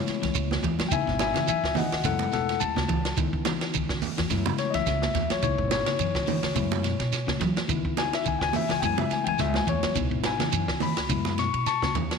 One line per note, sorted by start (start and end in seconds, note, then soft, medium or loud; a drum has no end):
0.00 0.19 C#3 medium
0.00 0.88 G#3 medium
0.00 0.88 A3 medium
0.00 0.88 B3 medium
0.00 0.89 E4 medium
0.00 0.61 C#5 loud
0.07 muted upright bass stroke soft
0.07 snare soft
0.07 ride bell medium
0.07 shekere soft
0.22 0.33 C#2 loud
0.22 0.33 E3 medium
0.22 snare soft
0.22 ride bell medium
0.34 0.58 C#2 loud
0.34 muted clean electric guitar stroke loud
0.34 ride bell medium
0.34 shekere loud
0.51 snare medium
0.51 high conga medium
0.63 0.76 E2 loud
0.63 0.88 E3 medium
0.63 kick medium
0.63 ride bell medium
0.63 low conga medium
0.63 shekere soft
0.79 0.93 F#3 medium
0.79 snare medium
0.79 ride bell medium
0.79 high conga medium
0.89 1.04 C#2 medium
0.89 1.05 C#3 loud
0.89 1.72 B3 medium
0.89 1.72 D#4 medium
0.89 1.18 E5 medium
0.89 0.92 G5 medium
0.89 kick loud
0.89 ride bell medium
0.89 shekere loud
0.93 1.73 E4 medium
0.93 1.20 G#5 loud
1.07 1.30 G#1 medium
1.07 1.32 B2 medium
1.07 kick medium
1.07 snare soft
1.19 1.46 E5 medium
1.19 1.48 G#5 medium
1.19 snare medium
1.19 ride bell medium
1.19 high conga loud
1.19 shekere soft
1.34 1.46 C#3 medium
1.34 muted upright bass stroke soft
1.34 snare medium
1.34 ride bell medium
1.34 high conga medium
1.34 low conga medium
1.47 1.61 F#2 medium
1.47 1.72 E3 loud
1.47 1.75 E5 loud
1.47 1.76 G#5 loud
1.47 ride bell medium
1.47 shekere loud
1.64 1.86 C#2 medium
1.64 kick medium
1.64 snare medium
1.75 2.01 D#3 medium
1.75 2.03 D#5 medium
1.75 2.04 F#5 medium
1.75 snare soft
1.75 open hi-hat medium
1.75 high conga loud
1.75 low conga loud
1.75 shekere soft
1.92 2.02 C#2 medium
1.92 snare medium
1.92 ride bell soft
2.04 2.27 F#2 loud
2.04 2.29 C#3 medium
2.04 2.85 G#3 medium
2.04 2.85 A3 medium
2.04 2.85 B3 medium
2.04 2.85 E4 medium
2.04 2.31 A4 medium
2.04 2.32 F#5 loud
2.04 kick medium
2.04 snare soft
2.04 ride bell medium
2.04 high conga medium
2.04 shekere medium
2.19 high conga loud
2.32 2.59 E2 medium
2.32 2.57 B2 medium
2.32 2.59 A4 loud
2.32 2.60 F#5 loud
2.32 snare soft
2.32 ride bell soft
2.32 shekere soft
2.49 snare soft
2.49 ride bell medium
2.60 2.87 D#2 loud
2.60 3.15 A5 loud
2.60 ride bell medium
2.60 shekere loud
2.76 2.87 C#3 medium
2.76 kick medium
2.76 snare medium
2.76 high conga medium
2.88 3.15 C#2 loud
2.88 3.13 E3 medium
2.88 kick medium
2.88 ride bell medium
2.88 low conga medium
2.88 shekere soft
3.05 snare medium
3.05 ride bell medium
3.17 3.30 C#2 loud
3.17 3.42 D#3 loud
3.17 3.98 B3 medium
3.17 3.98 D#4 medium
3.17 3.98 E4 medium
3.17 kick loud
3.17 ride bell medium
3.17 shekere loud
3.33 3.56 C#2 medium
3.33 kick medium
3.45 3.70 E3 medium
3.45 snare medium
3.45 ride bell medium
3.45 high conga loud
3.45 shekere soft
3.61 snare medium
3.61 ride bell medium
3.74 3.87 C#2 medium
3.74 3.98 D#3 medium
3.74 ride bell soft
3.74 shekere loud
3.89 4.00 C#2 medium
3.89 kick medium
3.89 snare medium
4.02 open hi-hat medium
4.02 high conga medium
4.02 low conga medium
4.02 shekere soft
4.17 4.28 E2 medium
4.17 4.42 E3 medium
4.17 snare medium
4.17 ride bell medium
4.30 4.53 F#2 loud
4.30 5.11 G#3 medium
4.30 5.11 A3 medium
4.30 5.11 B3 medium
4.30 5.11 E4 medium
4.30 kick medium
4.30 snare soft
4.30 ride bell medium
4.30 shekere loud
4.46 4.71 C#3 medium
4.46 high conga loud
4.58 4.73 C#5 loud
4.58 muted upright bass stroke soft
4.58 snare soft
4.58 ride bell medium
4.58 shekere soft
4.70 4.84 C#2 loud
4.70 4.85 E3 medium
4.70 4.73 D#5 medium
4.70 snare soft
4.70 ride bell medium
4.75 5.29 E5 loud
4.86 5.09 C#2 loud
4.86 5.11 G#3 medium
4.86 snare soft
4.86 ride bell medium
4.86 shekere loud
5.02 snare medium
5.02 high conga medium
5.14 5.27 E2 loud
5.14 5.39 E3 medium
5.14 kick medium
5.14 snare soft
5.14 ride bell medium
5.14 low conga loud
5.14 shekere soft
5.30 5.45 F#3 medium
5.30 5.43 C#5 loud
5.30 snare medium
5.30 ride bell medium
5.30 high conga medium
5.42 5.56 C#2 loud
5.42 5.56 C#3 loud
5.42 6.24 B3 medium
5.42 6.24 D#4 medium
5.42 6.24 E4 medium
5.42 5.71 C#5 loud
5.42 kick medium
5.42 ride bell medium
5.42 shekere loud
5.58 5.81 G#1 medium
5.58 5.83 B2 medium
5.58 kick medium
5.68 5.72 C5 medium
5.68 snare medium
5.68 ride bell medium
5.68 high conga loud
5.68 shekere soft
5.72 7.37 C#5 medium
5.86 5.98 C#3 medium
5.86 muted upright bass stroke soft
5.86 snare medium
5.86 ride bell medium
5.86 high conga medium
5.99 6.12 F#2 loud
5.99 6.24 E3 medium
5.99 ride bell medium
5.99 shekere loud
6.15 6.38 C#2 medium
6.15 kick medium
6.15 snare medium
6.27 6.52 D#3 medium
6.27 open hi-hat medium
6.27 high conga loud
6.27 low conga loud
6.27 shekere soft
6.43 6.53 C#2 medium
6.43 snare medium
6.43 ride bell medium
6.55 6.91 F#2 loud
6.55 6.80 C#3 medium
6.55 6.95 G#3 medium
6.55 6.95 A3 medium
6.55 6.95 B3 medium
6.55 6.95 E4 medium
6.55 kick medium
6.55 ride bell medium
6.55 high conga medium
6.55 shekere medium
6.72 high conga loud
6.83 7.09 B2 medium
6.83 snare soft
6.83 ride bell medium
6.83 shekere soft
6.99 7.22 B2 loud
6.99 snare soft
6.99 ride bell medium
7.12 snare soft
7.12 ride bell medium
7.12 shekere loud
7.27 7.39 C#3 medium
7.27 kick medium
7.27 snare medium
7.27 high conga medium
7.40 7.65 E3 medium
7.40 7.54 F#3 loud
7.40 kick medium
7.40 snare soft
7.40 ride bell medium
7.40 low conga medium
7.40 shekere soft
7.57 snare medium
7.57 ride bell medium
7.57 high conga medium
7.68 7.82 C#2 loud
7.68 7.93 D#3 loud
7.68 8.79 B3 medium
7.68 8.79 D#4 medium
7.68 8.79 E4 medium
7.68 kick loud
7.68 ride bell medium
7.68 shekere medium
7.85 8.08 C#2 medium
7.85 kick medium
7.97 8.13 G#5 loud
7.97 snare medium
7.97 ride bell medium
7.97 high conga loud
7.97 shekere soft
8.13 8.26 E5 medium
8.13 snare medium
8.13 ride bell medium
8.25 8.38 C#2 medium
8.25 8.50 D#3 medium
8.25 8.41 G#5 medium
8.25 ride bell soft
8.25 shekere loud
8.39 8.51 C#2 loud
8.39 8.42 G5 medium
8.39 kick medium
8.39 snare medium
8.43 8.54 G#5 loud
8.53 8.70 E5 medium
8.53 open hi-hat medium
8.53 high conga loud
8.53 low conga loud
8.53 shekere soft
8.68 8.79 C#2 medium
8.68 8.94 E3 medium
8.68 8.83 G#5 loud
8.68 snare medium
8.68 ride bell soft
8.80 9.05 F#2 loud
8.80 9.93 G#3 medium
8.80 9.93 A3 medium
8.80 9.93 B3 medium
8.80 8.84 G5 medium
8.80 kick medium
8.80 ride bell medium
8.80 high conga medium
8.80 shekere loud
8.84 9.93 E4 medium
8.84 8.99 G#5 loud
8.97 9.22 C#3 medium
8.97 9.11 E5 medium
8.97 high conga loud
9.11 9.27 G#5 loud
9.11 muted upright bass stroke soft
9.11 snare soft
9.11 ride bell medium
9.11 shekere soft
9.24 9.37 C#2 loud
9.24 9.37 E3 medium
9.24 9.27 G5 medium
9.24 ride bell medium
9.29 9.39 G#5 loud
9.38 9.62 C#2 loud
9.38 9.64 G#3 loud
9.38 9.55 E5 medium
9.38 snare soft
9.38 ride bell medium
9.38 shekere loud
9.54 9.68 G#5 loud
9.54 snare medium
9.54 high conga loud
9.67 9.80 E2 loud
9.67 9.92 E3 medium
9.67 9.96 C#5 loud
9.67 kick medium
9.67 ride bell medium
9.67 low conga medium
9.67 shekere soft
9.83 9.97 F#3 medium
9.83 snare medium
9.83 ride bell medium
9.83 high conga medium
9.95 10.09 C#2 loud
9.95 10.09 B2 loud
9.95 10.77 B3 medium
9.95 10.78 D#4 medium
9.95 10.78 E4 medium
9.95 kick loud
9.95 ride bell medium
9.95 shekere loud
10.10 10.34 G#1 medium
10.10 10.36 B2 medium
10.10 kick medium
10.24 10.80 G#5 loud
10.24 snare medium
10.24 ride bell medium
10.24 high conga loud
10.24 shekere soft
10.38 10.50 C#3 medium
10.38 snare medium
10.38 ride bell medium
10.38 high conga medium
10.38 low conga medium
10.52 10.65 F#2 loud
10.52 10.77 E3 medium
10.52 ride bell medium
10.52 shekere loud
10.68 10.92 C#2 medium
10.68 kick medium
10.68 snare medium
10.80 11.06 D#3 medium
10.80 11.37 B5 medium
10.80 open hi-hat medium
10.80 high conga loud
10.80 low conga loud
10.80 shekere soft
10.97 11.07 C#2 medium
10.97 snare medium
10.97 ride bell medium
11.09 11.45 F#2 loud
11.09 11.34 C#3 medium
11.09 11.48 G#3 medium
11.09 11.49 A3 medium
11.09 11.49 B3 medium
11.09 11.49 E4 medium
11.09 kick medium
11.09 ride bell medium
11.09 shekere loud
11.25 snare soft
11.25 high conga loud
11.38 11.63 B2 medium
11.38 11.66 C#6 loud
11.38 snare soft
11.38 ride bell medium
11.38 shekere soft
11.53 11.76 B2 medium
11.53 ride bell medium
11.66 11.93 A5 medium
11.66 11.95 C#6 medium
11.66 snare soft
11.66 ride bell medium
11.66 shekere loud
11.82 11.94 C#3 medium
11.82 kick medium
11.82 snare medium
11.82 high conga medium
11.95 12.08 D#2 loud
11.95 12.18 E3 medium
11.95 kick medium
11.95 ride bell medium
11.95 low conga medium
11.95 shekere soft
12.11 snare medium
12.11 ride bell medium
12.11 high conga medium